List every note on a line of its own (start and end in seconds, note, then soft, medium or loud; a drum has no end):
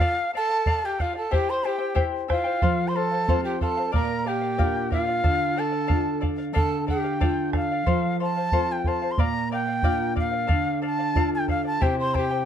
0.00 0.15 F4 medium
0.00 0.32 A4 medium
0.00 0.33 D5 medium
0.00 0.31 F5 loud
0.00 0.33 F5 medium
0.00 bombo low medium
0.33 0.50 A4 medium
0.33 0.87 A4 medium
0.33 0.49 D5 medium
0.33 0.48 F5 medium
0.33 0.87 A5 loud
0.49 0.66 D5 soft
0.49 0.66 F5 soft
0.66 0.97 A4 medium
0.66 0.98 D5 medium
0.66 0.99 F5 medium
0.66 bombo low medium
0.85 1.02 G4 medium
0.85 1.03 G5 medium
0.99 1.16 F4 medium
0.99 1.15 A4 medium
0.99 1.14 D5 medium
0.99 1.12 F5 medium
0.99 1.16 F5 medium
0.99 bombo low medium
1.13 1.31 D5 soft
1.13 1.30 F5 medium
1.13 1.35 A5 medium
1.17 1.34 A4 medium
1.31 1.64 E4 medium
1.31 1.64 G4 medium
1.31 1.52 G4 medium
1.31 1.63 C5 medium
1.31 1.62 E5 medium
1.31 1.64 G5 medium
1.31 1.51 G5 medium
1.31 bombo low medium
1.50 1.67 C5 medium
1.50 1.68 C6 medium
1.63 1.78 E4 medium
1.63 2.03 G4 medium
1.63 1.78 C5 medium
1.63 1.80 E5 medium
1.63 1.77 G5 medium
1.63 2.04 G5 medium
1.78 1.94 E4 soft
1.78 1.94 C5 soft
1.78 1.94 G5 soft
1.95 2.27 E4 medium
1.95 2.28 G4 medium
1.95 2.28 C5 medium
1.95 2.27 E5 medium
1.95 2.28 G5 medium
1.95 bombo low medium
2.28 2.45 E4 medium
2.28 2.90 F4 medium
2.28 2.44 C5 medium
2.28 2.45 E5 medium
2.28 2.90 F5 medium
2.28 2.43 G5 medium
2.28 bombo rim medium
2.28 bombo low medium
2.44 2.62 E4 soft
2.44 2.61 C5 soft
2.44 2.61 G5 medium
2.62 3.89 F3 medium
2.62 2.93 A4 medium
2.62 2.94 C5 medium
2.62 2.95 F5 medium
2.62 bombo low medium
2.88 2.98 C5 medium
2.88 2.98 C6 medium
2.94 3.11 A4 medium
2.94 3.43 A4 medium
2.94 3.11 C5 medium
2.94 3.10 F5 medium
2.94 3.44 A5 medium
3.11 3.28 C5 soft
3.11 3.27 F5 medium
3.28 3.91 C4 soft
3.28 3.91 F4 soft
3.28 3.60 A4 medium
3.28 3.91 A4 medium
3.28 3.61 C5 medium
3.28 3.61 F5 medium
3.28 bombo low medium
3.44 3.59 G4 medium
3.44 3.59 G5 medium
3.60 3.90 A4 medium
3.60 3.77 A4 medium
3.60 3.77 C5 medium
3.60 3.76 F5 medium
3.60 3.91 A5 medium
3.60 bombo low medium
3.77 3.94 C5 soft
3.77 3.92 F5 medium
3.92 5.20 A#2 medium
3.92 4.23 A#4 medium
3.92 4.29 A#4 medium
3.92 4.25 D5 medium
3.92 4.25 F5 medium
3.92 4.29 A#5 medium
3.92 bombo low medium
4.24 4.92 G4 medium
4.24 4.41 A#4 medium
4.24 4.41 D5 medium
4.24 4.40 F5 medium
4.24 4.92 G5 medium
4.41 4.57 D5 soft
4.41 4.58 F5 medium
4.58 5.22 D4 soft
4.58 5.22 F4 soft
4.58 4.89 A#4 medium
4.58 5.22 A#4 medium
4.58 4.91 D5 medium
4.58 4.91 F5 medium
4.58 bombo low medium
4.91 5.59 F4 medium
4.91 5.07 A#4 medium
4.91 5.07 D5 medium
4.91 5.06 F5 medium
4.91 5.61 F5 loud
4.91 bombo low medium
5.07 5.22 D5 soft
5.07 5.23 F5 medium
5.24 6.52 D3 medium
5.24 5.55 A4 medium
5.24 5.56 D5 medium
5.24 5.56 F5 medium
5.24 bombo low medium
5.56 5.73 A4 medium
5.56 6.23 A4 medium
5.56 5.71 D5 medium
5.56 5.70 F5 medium
5.56 6.24 A5 medium
5.71 5.87 D5 soft
5.71 5.87 F5 medium
5.87 6.54 D4 soft
5.87 6.19 A4 medium
5.87 6.20 D5 medium
5.87 6.21 F5 medium
5.87 bombo low medium
5.91 6.54 F4 soft
5.91 6.54 A4 medium
6.21 6.38 A4 medium
6.21 6.38 D5 medium
6.21 6.37 F5 medium
6.21 bombo low medium
6.38 6.53 D5 soft
6.38 6.53 F5 medium
6.53 7.83 D3 medium
6.53 6.85 A4 medium
6.53 6.87 D5 medium
6.53 6.87 F5 medium
6.53 6.85 A5 loud
6.53 bombo low medium
6.87 7.19 G4 medium
6.87 7.04 A4 medium
6.87 7.04 D5 medium
6.87 7.03 F5 medium
6.87 7.50 G5 medium
6.87 bombo low medium
7.04 7.20 D5 soft
7.04 7.20 F5 medium
7.20 7.84 D4 soft
7.20 7.85 F4 soft
7.20 7.67 F4 medium
7.20 7.52 A4 medium
7.20 7.85 A4 medium
7.20 7.53 D5 medium
7.20 7.53 F5 medium
7.20 bombo low medium
7.53 7.70 A4 medium
7.53 7.70 D5 medium
7.53 7.70 F5 medium
7.53 8.17 F5 medium
7.53 bombo rim medium
7.53 bombo low medium
7.71 7.86 D5 soft
7.71 7.86 F5 medium
7.86 9.14 F3 medium
7.86 8.19 A4 medium
7.86 8.19 C5 medium
7.86 8.20 F5 medium
7.86 bombo low medium
8.20 8.36 A4 medium
8.20 8.36 C5 medium
8.20 8.35 F5 medium
8.20 8.73 A5 loud
8.36 8.52 C5 soft
8.36 8.52 F5 soft
8.52 9.16 C4 soft
8.52 9.16 F4 soft
8.52 9.16 A4 medium
8.52 8.85 A4 medium
8.52 8.86 C5 medium
8.52 8.86 F5 medium
8.52 bombo low medium
8.72 8.90 G5 medium
8.84 9.02 A4 medium
8.84 9.02 C5 medium
8.84 9.01 F5 medium
8.84 9.13 A5 medium
8.84 bombo low medium
9.02 9.19 C5 soft
9.02 9.18 F5 medium
9.11 9.22 C6 medium
9.17 10.45 A#2 medium
9.17 9.50 A#4 medium
9.17 9.51 D5 medium
9.17 9.51 F5 medium
9.17 9.52 A#5 loud
9.17 bombo low medium
9.51 9.68 A#4 medium
9.51 9.67 D5 medium
9.51 9.66 F5 medium
9.51 10.14 G5 medium
9.68 9.83 D5 soft
9.68 9.83 F5 medium
9.82 10.47 D4 soft
9.82 10.47 F4 soft
9.82 10.47 A#4 medium
9.82 10.14 A#4 medium
9.82 10.15 D5 medium
9.82 10.15 F5 medium
9.82 bombo low medium
10.15 10.33 A#4 medium
10.15 10.31 D5 medium
10.15 10.30 F5 medium
10.15 10.80 F5 medium
10.15 bombo low medium
10.31 10.47 D5 soft
10.31 10.47 F5 medium
10.47 11.77 D3 medium
10.47 10.80 A4 medium
10.47 10.81 D5 medium
10.47 10.82 F5 medium
10.47 bombo low medium
10.82 10.99 A4 medium
10.82 10.98 D5 medium
10.82 10.97 F5 medium
10.86 11.30 A5 loud
10.99 11.15 D5 soft
10.99 11.15 F5 medium
11.14 11.79 D4 soft
11.14 11.79 F4 medium
11.14 11.79 A4 medium
11.14 11.47 A4 medium
11.14 11.48 D5 medium
11.14 11.48 F5 medium
11.14 bombo low medium
11.35 11.49 G5 medium
11.48 11.65 A4 medium
11.48 11.64 D5 medium
11.48 11.63 F5 medium
11.48 11.65 F5 medium
11.48 bombo low medium
11.64 11.81 D5 soft
11.64 11.81 F5 soft
11.64 11.84 A5 loud
11.81 12.45 C3 medium
11.81 12.13 E4 medium
11.81 12.14 G4 medium
11.81 11.99 G4 medium
11.81 12.14 C5 medium
11.81 12.12 E5 medium
11.81 12.14 G5 medium
11.81 11.98 G5 medium
11.81 bombo low medium
11.99 12.18 C5 medium
11.99 12.16 C6 medium
12.14 12.31 E4 medium
12.14 12.45 G4 medium
12.14 12.30 C5 medium
12.14 12.30 E5 medium
12.14 12.45 G5 medium
12.14 12.30 G5 medium
12.14 bombo low medium
12.31 12.45 E4 soft
12.31 12.45 C5 soft
12.31 12.45 G5 medium